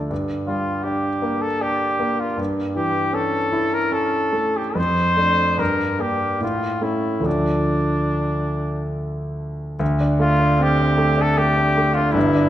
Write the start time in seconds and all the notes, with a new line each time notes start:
Already playing: F3 A3 D4
0.10 G2
0.47 G3 F4
0.84 D4 G4
1.22 A#3
1.42 A4
1.61 D4 G4
2.00 A#3
2.20 F4
2.37 G2
2.76 E3 G4
3.13 C#4 A4
3.52 E4
3.74 A#4
3.92 C#4 A4
4.33 A3
4.57 G4
4.75 F2 C5
5.17 A3 D4
5.58 G2 A#4
5.99 A#3 D4 G4
6.41 A2 F4
6.81 A3 C#4 E4
7.20 D2 F3 A3 D4
7.26 D4
9.79 D2
10.01 D4
10.20 A3 F4
10.40 D4
10.60 C4 G4
10.79 D4
10.98 A3
11.18 D4 A4
11.38 A3 G4
11.57 D4
11.77 A3
11.95 D4 F4
12.12 G1 G2 E4
12.35 D4